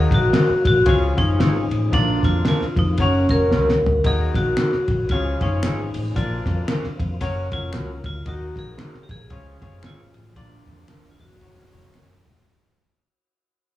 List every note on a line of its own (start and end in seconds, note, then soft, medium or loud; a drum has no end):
0.00 0.62 D#3 medium
0.00 0.87 D#3 medium
0.00 0.86 F#3 medium
0.00 0.87 A#3 medium
0.00 0.44 D#4 medium
0.00 0.44 F#4 medium
0.00 0.87 F#4 medium
0.00 0.14 G#4 loud
0.00 0.44 A#4 medium
0.00 0.44 D#5 medium
0.11 0.28 A#1 medium
0.11 0.66 F#4 loud
0.11 kick medium
0.11 ride medium
0.33 0.50 F#4 medium
0.33 0.50 A#4 loud
0.33 0.50 D#5 loud
0.33 snare loud
0.33 ride medium
0.50 muted fingered electric bass stroke soft
0.65 0.82 A#1 loud
0.65 0.89 F#4 loud
0.65 kick loud
0.65 ride medium
0.86 1.10 C#2 loud
0.86 1.66 C#3 medium
0.86 2.97 F3 medium
0.86 1.92 G#3 medium
0.86 1.11 C#4 medium
0.86 1.92 C#4 medium
0.86 1.11 F4 medium
0.86 1.20 F4 loud
0.86 1.11 G#4 medium
0.86 1.93 G#4 medium
0.86 1.11 C#5 medium
0.86 kick loud
0.86 ride medium
1.17 1.40 F#1 medium
1.17 1.62 C#4 medium
1.17 1.96 D#4 loud
1.17 1.62 F4 medium
1.17 1.62 G#4 medium
1.17 1.62 C#5 medium
1.17 kick loud
1.17 ride medium
1.39 1.63 G#1 loud
1.39 1.55 F4 medium
1.39 1.56 G#4 medium
1.39 1.56 C#5 loud
1.39 snare loud
1.39 ride medium
1.71 1.88 A1 medium
1.71 ride medium
1.92 2.17 A#1 loud
1.92 2.73 A#2 medium
1.92 2.98 D3 medium
1.92 5.06 A#3 medium
1.92 2.54 D4 medium
1.92 2.25 D4 loud
1.92 2.97 F4 medium
1.92 2.55 F4 medium
1.92 2.55 A#4 medium
1.92 2.55 D5 medium
1.92 kick loud
1.92 ride medium
2.23 2.40 F2 medium
2.23 2.47 F4 medium
2.23 kick loud
2.23 snare soft
2.23 ride medium
2.45 2.61 D4 medium
2.45 2.62 F4 medium
2.45 2.79 F4 medium
2.45 2.62 A#4 loud
2.45 snare loud
2.45 ride medium
2.61 muted fingered electric bass stroke soft
2.61 snare soft
2.76 2.93 F2 loud
2.76 2.98 D#4 medium
2.76 kick loud
2.76 ride medium
2.98 3.22 F#1 loud
2.98 4.04 C#3 medium
2.98 5.08 F#3 medium
2.98 3.24 C#4 medium
2.98 5.08 F#4 medium
2.98 3.24 F#4 medium
2.98 3.24 A#4 medium
2.98 3.24 C#5 loud
2.98 kick loud
2.98 ride medium
3.02 3.32 C#4 medium
3.29 3.53 F1 medium
3.29 3.74 C#4 medium
3.29 3.74 F#4 medium
3.29 4.07 A#4 loud
3.29 3.74 A#4 medium
3.29 3.74 C#5 medium
3.29 kick loud
3.29 ride medium
3.51 3.75 C#2 loud
3.51 3.67 C#4 medium
3.51 3.68 F#4 medium
3.51 3.68 A#4 medium
3.51 snare medium
3.69 snare medium
3.82 3.99 D2 medium
3.86 floor tom loud
4.04 4.28 D#2 loud
4.04 5.09 D#3 medium
4.04 4.85 D#3 medium
4.04 4.66 D#4 medium
4.04 4.67 F#4 medium
4.04 4.37 G#4 loud
4.04 4.67 A#4 medium
4.04 4.67 D#5 medium
4.04 kick loud
4.04 ride medium
4.34 4.51 A#1 medium
4.34 5.13 F#4 medium
4.34 kick medium
4.34 snare soft
4.34 ride medium
4.57 4.73 D#4 medium
4.57 4.73 F#4 medium
4.57 4.73 A#4 loud
4.57 finger snap medium
4.57 snare loud
4.57 ride medium
4.72 muted fingered electric bass stroke soft
4.72 snare soft
4.88 5.05 A#1 loud
4.88 kick medium
4.88 ride medium
5.09 5.33 C#2 loud
5.09 5.90 C#3 medium
5.09 7.20 F3 medium
5.09 6.15 G#3 medium
5.09 5.35 C#4 medium
5.09 6.15 C#4 medium
5.09 5.42 F4 medium
5.09 5.36 F4 medium
5.09 6.15 G#4 medium
5.09 5.36 G#4 medium
5.09 5.35 C#5 medium
5.09 kick loud
5.09 ride medium
5.41 5.64 F#1 loud
5.41 5.85 C#4 medium
5.41 6.12 D#4 medium
5.41 5.85 F4 medium
5.41 5.86 G#4 medium
5.41 5.86 C#5 medium
5.41 kick medium
5.41 ride medium
5.63 5.87 G#1 loud
5.63 5.78 F4 medium
5.63 5.79 G#4 medium
5.63 5.79 C#5 medium
5.63 finger snap loud
5.63 snare loud
5.63 ride medium
5.94 6.11 A1 medium
5.94 open hi-hat soft
5.94 ride medium
6.16 6.39 A#1 loud
6.16 6.95 A#2 medium
6.16 7.21 D3 medium
6.16 8.25 A#3 medium
6.16 6.77 D4 medium
6.16 6.77 F4 medium
6.16 6.95 F4 medium
6.16 7.21 F4 medium
6.16 6.77 A#4 medium
6.16 6.77 D5 medium
6.16 kick loud
6.16 hi-hat pedal medium
6.16 ride medium
6.46 6.62 F2 medium
6.46 kick loud
6.46 snare soft
6.46 ride medium
6.68 6.84 D4 loud
6.68 6.84 F4 medium
6.68 6.84 A#4 loud
6.68 finger snap medium
6.68 snare loud
6.68 ride medium
6.84 muted fingered electric bass stroke soft
6.84 snare soft
7.00 7.16 F2 loud
7.00 kick loud
7.00 ride medium
7.21 7.44 F#1 loud
7.21 8.26 C#3 medium
7.21 8.24 F#3 medium
7.21 7.45 C#4 loud
7.21 7.45 F#4 medium
7.21 7.46 A#4 medium
7.21 9.30 A#4 medium
7.21 7.46 C#5 loud
7.21 kick loud
7.21 ride medium
7.51 7.76 F1 loud
7.51 7.96 F#3 medium
7.51 7.95 C#4 medium
7.51 8.01 F4 loud
7.51 7.96 A#4 medium
7.51 7.96 C#5 medium
7.51 kick medium
7.51 ride medium
7.73 7.97 C#2 loud
7.73 7.89 C#4 medium
7.73 7.89 F#4 loud
7.73 7.90 A#4 medium
7.73 finger snap loud
7.73 snare loud
7.73 ride medium
8.04 8.21 D2 loud
8.04 8.28 F4 loud
8.04 kick loud
8.04 ride medium
8.25 8.49 D#2 loud
8.25 9.30 D#3 medium
8.25 9.06 D#3 medium
8.25 9.30 F#3 medium
8.25 9.30 A#3 medium
8.25 8.88 D#4 medium
8.25 8.88 F#4 medium
8.25 8.59 F#4 loud
8.25 8.88 A#4 medium
8.25 8.88 D#5 medium
8.25 kick loud
8.25 ride loud
8.56 8.73 A#1 medium
8.56 8.99 G#4 loud
8.56 kick loud
8.56 snare soft
8.56 ride medium
8.78 8.94 D#4 medium
8.78 8.94 F#4 loud
8.78 8.95 A#4 medium
8.78 finger snap medium
8.78 snare loud
8.78 ride medium
8.94 muted fingered electric bass stroke soft
8.94 snare soft
9.03 9.10 G4 medium
9.09 9.26 A#1 loud
9.09 9.81 G#4 loud
9.09 kick loud
9.09 ride medium
9.28 9.54 C#2 loud
9.28 10.10 C#3 medium
9.28 10.35 F3 medium
9.28 10.35 G#3 medium
9.28 10.34 C#4 medium
9.28 9.55 C#4 medium
9.28 9.56 F4 medium
9.28 10.35 G#4 medium
9.28 9.56 G#4 medium
9.28 9.56 C#5 medium
9.28 kick loud
9.28 ride medium
9.61 9.84 F#1 loud
9.61 10.05 C#4 medium
9.61 10.06 F4 medium
9.61 10.06 G#4 medium
9.61 10.06 C#5 medium
9.61 kick medium
9.61 ride medium
9.83 10.07 G#1 loud
9.83 9.99 F4 medium
9.83 10.40 F4 loud
9.83 10.00 G#4 medium
9.83 10.00 C#5 loud
9.83 finger snap loud
9.83 snare loud
9.83 ride medium
10.14 10.32 A1 medium
10.14 ride medium
10.36 10.60 A#1 loud
10.36 11.16 A#2 medium
10.36 11.42 D3 medium
10.36 11.41 F3 medium
10.36 10.98 D4 medium
10.36 11.14 D4 loud
10.36 10.98 F4 medium
10.36 11.42 F4 medium
10.36 10.98 A#4 medium
10.36 10.98 D5 medium
10.36 kick loud
10.36 ride loud
10.66 10.84 F2 medium
10.66 kick loud
10.66 ride medium
10.88 11.05 D4 medium
10.88 11.05 F4 medium
10.88 11.05 A#4 medium
10.88 finger snap medium
10.88 snare loud
10.88 ride medium
11.04 muted fingered electric bass stroke soft
11.04 snare soft
11.11 11.20 F4 medium
11.20 11.37 F2 loud
11.20 11.91 F#4 medium
11.20 kick loud
11.20 ride medium
11.41 11.65 F#1 loud
11.41 12.48 C#3 medium
11.41 12.47 F#3 medium
11.41 11.66 C#4 medium
11.41 11.67 F#4 medium
11.41 12.47 F#4 medium
11.41 11.66 A#4 medium
11.41 11.67 C#5 medium
11.41 kick loud
11.41 ride medium
11.72 11.90 F1 loud
11.72 12.17 C#4 medium
11.72 12.17 F#4 medium
11.72 12.17 A#4 medium
11.72 12.17 C#5 medium
11.72 kick medium
11.72 ride medium
11.94 12.18 F#1 loud
11.94 12.10 C#4 loud
11.94 12.10 F#4 loud
11.94 12.11 A#4 loud
11.94 finger snap loud
11.94 snare loud
11.94 ride medium
12.25 12.34 F1 medium
12.25 kick loud
12.25 ride medium